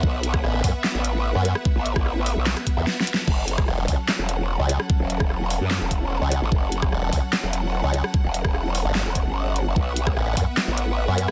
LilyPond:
<<
  \new Staff \with { instrumentName = "String section" } { \time 4/4 \key fis \minor \tempo 4 = 148 << { fis''1~ | fis''1 | fis''1~ | fis''1~ |
fis''1~ | fis''1~ | fis''1 | } \\ { <b b' e''>1~ | <b b' e''>1 | <fis cis' a'>1~ | <fis cis' a'>1~ |
<fis cis' a'>1~ | <fis cis' a'>1 | <b b' e''>1 | } >> }
  \new Staff \with { instrumentName = "Wobble bass" } { \clef bass \time 4/4 \key fis \minor r4 a,,8 fis,16 r4. fis,8 r16 | r2 r8. e,16 r4 | r4 e,,8 cis,16 r4. cis,8 r16 | r2. r16 cis,8 r16 |
r4 e,,8 cis,16 r4. cis,8 r16 | r4. r16 g,,8 r4. r16 | r4 a,,8 fis,16 r4. fis,8 r16 | }
  \new Staff \with { instrumentName = "Wobble bass" } { \clef bass \time 4/4 \key fis \minor b,,4 r4 r16 a,,4 r8. | r16 a,,4. b,,8 r4. r16 | fis,,4 r4 r16 e,,4 r8. | r16 e,,4. fis,8 e,,4 r8 a,,16 |
fis,,4 r4 r16 e,,4 r8. | r16 e,,4. r8 e,,8 g,,4 fis,,16 | b,,4 r4 r16 a,,4 r8. | }
  \new DrumStaff \with { instrumentName = "Drums" } \drummode { \time 4/4 bd8 hh16 <bd ss>16 ss8 <hho bd>8 <hc sn>8 hh8 r8 hh16 ss16 | bd8 hh16 <bd ss>16 ss8 hho8 <hc sn>16 <hh ss>16 <hh bd>8 \tuplet 3/2 { sn16 r16 sn16 hh16 sn16 r16 } | <cymc bd>8 hh16 <bd ss>16 ss8 <hho bd>8 <hc sn>8 hh8 r8 hh16 ss16 | bd8 hh16 <bd ss>16 ss8 hho8 <hc sn>8 <hh bd>8 r8 hh8 |
bd8 hh16 <bd ss>16 ss8 <hho bd>8 <hc sn>8 hh8 r8 hh16 ss16 | bd8 hh16 <bd ss>16 ss8 hho8 <hc sn>8 <hh bd>8 r8 hh8 | bd8 hh16 <bd ss>16 ss8 <hho bd>8 <hc sn>8 hh8 r8 hh8 | }
>>